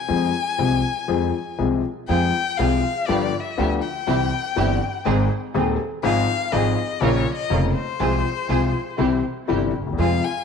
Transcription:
Already playing: G#5
0.08 F2 F3 G#3 C4 G#4
0.58 C2 C3 F3 G#3 C4 G#4
1.08 F2 F3 G#3 C4 G#4
1.58 C2 C3 F3 G#3 C4 G#4
2.09 F2 F3 G#3 C4 F4 G#4 G5
2.58 C2 C3 F3 G#3 C4 F4 G#4 F5
3.07 G1 G2 F3 B3 D4 F4 G4 D5
3.40 E5
3.58 D2 D3 F3 B3 D4 F4 G4
3.82 G5
4.07 C2 C3 E3 G3 C4 E4 G4
4.56 G1 G2 E3 G3 C4 E4 G4
5.05 G#1 G#2 D#3 G#3 C4 D#4 G#4
5.54 D#1 D#2 D#3 G#3 C4 D#4 G#4
6.03 G#1 G#2 F3 G#3 C4 F4 G#4 F5
6.52 G#1 G#2 F3 G#3 C4 F4 G#4 D#5
7.01 A#1 A#2 C#3 F3 A#3 C#4 F4 A#4 C#5
7.35 D#5
7.50 F1 F2 C#3 F3 A#3 C#4 F4 A#4
7.75 C5
7.99 C2 C3 F3 G#3 C4 F4 G#4
8.49 C2 C3 F3 G#3 C4 F4 G#4
8.98 C2 C3 E3 G3 C4 E4 G4
9.48 G1 G2 C3 E3 G3 C4 E4 G4
9.80 D2
9.86 D#2
9.92 E2
9.98 F2 C3 F3 G#3 C4 F4 G#4 F5
10.24 G#5

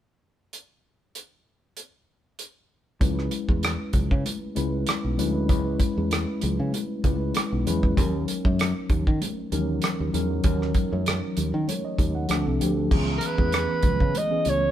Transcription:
0.53 closed hi-hat
1.15 closed hi-hat
1.77 closed hi-hat
2.39 closed hi-hat
3.01 C#2 G#3 C#4 E4 B4, kick, closed hi-hat, muted conga, low conga
3.19 cross-stick
3.31 closed hi-hat
3.49 E2, kick, high conga
3.63 cross-stick, closed hi-hat, muted conga
3.93 C#2, kick, closed hi-hat, muted conga, low conga
4.11 C#3, kick
4.25 closed hi-hat, muted conga, high conga
4.55 C#2 G#3 C#4 E4 B4, closed hi-hat, muted conga, high conga
4.87 cross-stick, closed hi-hat
5.04 B1, high conga
5.17 D2 G#3 C#4 E4 B4, closed hi-hat, low conga
5.48 C#2 G#3 C#4 E4 B4, kick, closed hi-hat, low conga
5.79 kick, closed hi-hat
5.97 E2, high conga
6.11 cross-stick, closed hi-hat
6.41 C#2, closed hi-hat, muted conga, low conga
6.59 C#3
6.72 closed hi-hat, muted conga, high conga
7.04 C#2 G#3 C#4 E4 B4, kick, closed hi-hat, muted conga, high conga
7.35 cross-stick, closed hi-hat, muted conga
7.52 B1, high conga
7.66 E2 G#3 C#4 E4 B4, closed hi-hat, low conga
7.83 kick
7.97 D#2 F#3 C#4 D#4 A#4, kick, closed hi-hat, low conga
8.28 closed hi-hat, muted conga
8.45 F#2, kick, high conga
8.59 cross-stick, closed hi-hat, muted conga
8.90 D#2, kick, closed hi-hat, low conga
9.07 D#3, kick
9.21 closed hi-hat, muted conga, high conga
9.52 D#2 E3 C#4 D#4 A#4, closed hi-hat, high conga
9.58 F#3
9.82 cross-stick, closed hi-hat, muted conga
9.99 D#2, high conga
10.13 E2 F#3 C#4 D#4 A#4, closed hi-hat, muted conga, low conga
10.44 D#2 F#3 C#4 D#4 A#4, kick, closed hi-hat, low conga
10.62 cross-stick
10.74 kick, closed hi-hat, muted conga
10.92 F#2, high conga
11.06 cross-stick, closed hi-hat, muted conga
11.37 D#2, closed hi-hat, low conga
11.54 D#3
11.68 C#5, closed hi-hat, muted conga, high conga
11.85 D#5
11.98 D#2, kick, closed hi-hat, muted conga, high conga
12.15 F#5
12.29 D2 F3 C4 D4 A4, cross-stick, closed hi-hat, muted conga
12.47 C2, high conga
12.60 D2 F3 C4 D4 G4, closed hi-hat, muted conga, low conga
12.91 C#2 E3 B3 C#4 G#4, kick, crash, low conga
13.18 A#4, closed hi-hat
13.23 B4, muted conga
13.38 E2 E3 B3 C#4 G#4, kick, high conga
13.52 cross-stick, closed hi-hat, muted conga
13.83 C#2, kick, closed hi-hat, muted conga, low conga
14.00 C#3, kick
14.14 D#5, closed hi-hat, high conga
14.30 E3 B3 C#4 G#4
14.45 C#2 C#5, closed hi-hat, muted conga, high conga

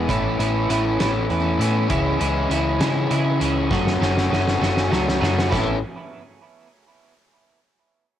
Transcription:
0.08 A1 A2 E3 A3 B3 C#4 E4, kick, closed hi-hat
0.39 A1 A2 E3 A3 B3 C#4 E4, closed hi-hat
0.69 A1 A2 E3 A3 B3 C#4 E4, closed hi-hat
0.99 A1 A2 E3 A3 B3 C#4 E4, snare, closed hi-hat
1.29 E2 A2 E3 A3 B3 C#4 E4, closed hi-hat
1.59 A2 E3 A3 B3 C#4 E4, closed hi-hat
1.88 C#2 C#3 E3 G#3 C#4 E4, kick, closed hi-hat
2.19 C#2 C#3 E3 G#3 C#4 E4, closed hi-hat
2.49 C#2 C#3 E3 G#3 C#4 E4, closed hi-hat
2.80 C#3 E3 G#3 C#4 E4, snare, closed hi-hat
3.11 C#3 E3 G#3 C#4 E4, closed hi-hat
3.39 C#2 C#3 E3 G#3 C#4 E4, closed hi-hat
3.70 F#1 F#2 C#3 F#3 A3 C#4 F#4 G#4, kick, snare
3.87 snare
4.00 F#1 F#2 C#3 F#3 A3 C#4 F#4 G#4, snare
4.17 snare
4.30 F#1 F#2 C#3 F#3 A3 C#4 F#4 G#4, snare
4.48 snare
4.61 F#1 F#2 C#3 F#3 A3 C#4 F#4 G#4, snare
4.77 snare
4.90 C#2 F#2 C#3 F#3 A3 C#4 F#4 G#4, snare
5.09 snare
5.21 F#2 C#3 F#3 A3 C#4 F#4 G#4, snare
5.39 snare
5.50 A1 A2 E3 A3 B3 C#4 E4, kick, snare, crash

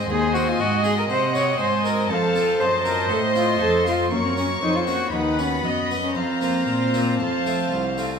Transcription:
0.09 D#2 G#4 C5 D#5 G#5
0.34 C4 F#4
0.48 F4
0.60 G#2 F#4 D#5
0.84 C4 F#4 G#4
0.99 A#4
1.10 C3 C5 D#5 F#5
1.35 C4 F#4 C#5
1.59 G#2 C5 G#5
1.85 C4 F#4 A#4
2.10 F2 A4 C5 F5 A5
2.36 C4 F4
2.60 F#2 C5 D#5 A5
2.85 C4 F4 A#4
3.10 A2 A4 C6
3.35 C4 F4
3.61 F2 A4
3.87 C4 F4
4.11 F#2 A#3 A#4 C#5 C#6
4.25 C4
4.37 A#3 C#4
4.62 F2 D#4 C5
4.76 F4
4.87 A#3 C#4 F#4
5.12 D#2 D#4 B4 F#5 B5
5.39 B3 C#4 F#4
5.64 F#2 B3 D#5
5.91 B3 F#4
6.04 C#4
6.15 F2 C4 C5 F5 A#5
6.41 A#3 C4 F4
6.68 A#2
6.94 A#3 C4 F4
7.19 F2 C5 F5 A5
7.46 A3 C4 F4
7.71 C2
7.98 A3 C4 F4

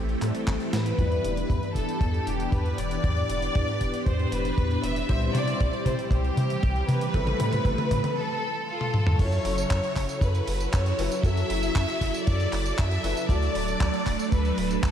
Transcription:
Already playing: A1 E3 G3 A3 C4 E4 G4 A4
0.09 closed hi-hat
0.22 A2 G3 C4 E4 A4, clap, closed hi-hat
0.35 closed hi-hat
0.47 A1, kick, clap, closed hi-hat
0.60 closed hi-hat
0.73 A2 B4, snare, closed hi-hat
0.86 closed hi-hat
0.99 E2 E3 G3 B3 D4 E4 G4 B4, kick, closed hi-hat, mid tom
1.12 closed hi-hat
1.24 E1, closed hi-hat
1.37 closed hi-hat
1.50 E2, kick, closed hi-hat, mid tom
1.63 closed hi-hat
1.75 E1 A4, kick, closed hi-hat
1.89 closed hi-hat
2.01 E2, kick, closed hi-hat, mid tom
2.14 closed hi-hat
2.27 E1 G4, closed hi-hat
2.40 closed hi-hat
2.52 E2 B4, kick, closed hi-hat, mid tom
2.66 closed hi-hat
2.78 E1 D5, closed hi-hat
2.91 closed hi-hat
3.04 E2, kick, closed hi-hat, mid tom
3.17 closed hi-hat
3.29 E1, closed hi-hat
3.42 closed hi-hat
3.55 E2, kick, closed hi-hat, mid tom
3.68 closed hi-hat
3.81 E1, kick, closed hi-hat
3.94 closed hi-hat
4.06 E2 C5, kick, closed hi-hat, mid tom
4.19 closed hi-hat
4.32 E1 B4, closed hi-hat
4.45 closed hi-hat
4.58 E2, kick, closed hi-hat, mid tom
4.71 closed hi-hat
4.83 E1 E5, closed hi-hat
4.96 closed hi-hat
5.09 C2 E3 G3 C4 E4 C5 E5, kick, closed hi-hat, mid tom
5.22 closed hi-hat
5.35 C3 D5, closed hi-hat, mid tom
5.48 closed hi-hat
5.60 C2, kick, closed hi-hat, mid tom
5.73 closed hi-hat
5.86 C3 C5, kick, closed hi-hat, mid tom
5.99 closed hi-hat
6.11 C2 G4, kick, closed hi-hat, mid tom
6.24 closed hi-hat
6.37 C3, closed hi-hat, mid tom
6.50 closed hi-hat
6.63 C2, kick, closed hi-hat, mid tom
6.76 closed hi-hat
6.88 C3 B4, closed hi-hat, mid tom
7.01 closed hi-hat
7.14 A1 G3 A3 C4 E4 A4, kick, closed hi-hat, mid tom
7.27 closed hi-hat, mid tom
7.40 A2, closed hi-hat, mid tom
7.53 closed hi-hat, mid tom
7.65 A1, kick, closed hi-hat, mid tom
7.78 closed hi-hat, mid tom
7.91 A2, kick, closed hi-hat, mid tom
8.04 closed hi-hat, mid tom
8.17 A4
8.68 F4 A4
8.81 high tom
8.94 mid tom
9.07 mid tom
9.19 F#2 C#3 F#3 C#4 E4 A4 C#5, kick, closed hi-hat, crash, tambourine
9.32 closed hi-hat, tambourine
9.45 F#1, open hi-hat
9.58 closed hi-hat, tambourine
9.71 F#2, kick, clap, closed hi-hat, tambourine
9.84 closed hi-hat, tambourine
9.96 F#1, kick, clap, open hi-hat
10.09 closed hi-hat, tambourine
10.21 F#2 B4, kick, closed hi-hat, tambourine
10.35 closed hi-hat, tambourine
10.48 F#1, open hi-hat
10.60 closed hi-hat, tambourine
10.73 F#2 C#5, kick, clap, closed hi-hat, tambourine
10.86 closed hi-hat, tambourine
10.99 F#1 F#3 C#4 E4 B4, open hi-hat
11.12 closed hi-hat, tambourine
11.23 F#2 F#3 C#4 E4 A4 E5, kick, closed hi-hat, tambourine
11.37 closed hi-hat, tambourine
11.50 F#1, open hi-hat
11.63 closed hi-hat, tambourine
11.76 F#2, kick, clap, closed hi-hat, tambourine
11.89 closed hi-hat, tambourine
12.01 F#1, kick, open hi-hat
12.14 closed hi-hat, tambourine
12.27 F#2 D5, kick, closed hi-hat, tambourine
12.40 closed hi-hat, tambourine
12.53 F#1, clap, open hi-hat
12.66 closed hi-hat, tambourine
12.78 F#2 E5, kick, clap, closed hi-hat, tambourine
12.91 closed hi-hat, tambourine
13.04 F#1 F#3 C#4 E4 B4, open hi-hat
13.17 closed hi-hat, tambourine
13.29 D2 F#3 A3 D4 A4 D5, kick, closed hi-hat, tambourine
13.42 closed hi-hat, tambourine
13.55 D1, open hi-hat
13.68 closed hi-hat, tambourine
13.81 D2, kick, clap, closed hi-hat, tambourine
13.94 closed hi-hat, tambourine
14.06 D1, kick, clap, open hi-hat
14.19 closed hi-hat, tambourine
14.32 D2 B4, kick, closed hi-hat, tambourine
14.45 closed hi-hat, tambourine
14.58 D1, open hi-hat
14.71 closed hi-hat, tambourine
14.83 D2 A4, kick, clap, closed hi-hat, tambourine

